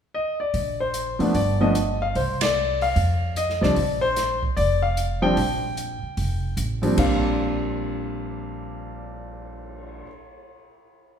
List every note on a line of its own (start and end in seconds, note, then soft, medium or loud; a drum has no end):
0.14 0.38 D#5 medium
0.40 0.77 D5 medium
0.54 1.16 A#1 medium
0.54 kick soft
0.54 open hi-hat soft
0.80 1.18 C5 medium
0.94 closed hi-hat soft
1.19 1.33 F#1 medium
1.19 1.33 F3 medium
1.19 1.33 A3 soft
1.19 1.33 B3 soft
1.19 1.34 D4 medium
1.19 open hi-hat soft
1.34 2.11 G1 medium
1.34 1.61 D5 medium
1.34 kick soft
1.34 open hi-hat soft
1.61 1.74 F3 medium
1.61 1.74 A3 soft
1.61 1.74 B3 soft
1.61 1.75 D4 medium
1.61 2.02 D#5 medium
1.75 closed hi-hat soft
2.02 2.16 F5 medium
2.15 2.92 C2 medium
2.15 2.40 C5 medium
2.15 kick soft
2.15 open hi-hat soft
2.41 2.83 D5 medium
2.41 snare medium
2.41 ride medium
2.81 3.33 F5 medium
2.81 open hi-hat soft
2.96 3.58 F2 medium
2.96 kick soft
2.96 open hi-hat soft
3.36 3.63 D#5 medium
3.36 closed hi-hat soft
3.50 snare soft
3.61 3.75 C2 medium
3.61 3.75 F3 soft
3.61 3.75 G3 soft
3.61 3.75 C4 soft
3.61 3.76 D4 medium
3.61 4.03 D5 medium
3.61 snare soft
3.76 4.53 A#1 medium
3.76 kick soft
3.76 open hi-hat soft
4.01 4.39 C5 medium
4.16 snare soft
4.16 closed hi-hat soft
4.43 kick soft
4.57 5.33 F1 medium
4.57 4.80 D5 medium
4.57 kick soft
4.57 open hi-hat soft
4.83 5.20 F5 medium
4.97 closed hi-hat soft
5.22 5.35 F3 medium
5.22 5.36 G3 medium
5.22 5.36 C4 medium
5.22 5.36 D4 medium
5.22 6.53 G5 medium
5.37 5.99 A#1 medium
5.37 kick soft
5.37 open hi-hat soft
5.77 closed hi-hat soft
6.03 muted upright bass stroke soft
6.17 6.54 F1 medium
6.17 kick soft
6.17 open hi-hat soft
6.57 6.94 A1 medium
6.57 closed hi-hat soft
6.82 6.94 A#2 soft
6.82 6.96 F3 medium
6.82 6.95 G3 medium
6.82 6.96 C4 medium
6.82 6.96 D4 medium
6.82 open hi-hat soft
6.96 10.01 A#1 medium
6.96 10.04 A#2 medium
6.96 10.05 G3 medium
6.96 10.06 C4 medium
6.96 10.07 D4 medium
6.96 10.03 F5 medium
6.96 kick soft
6.96 crash medium
7.24 cymbal swell soft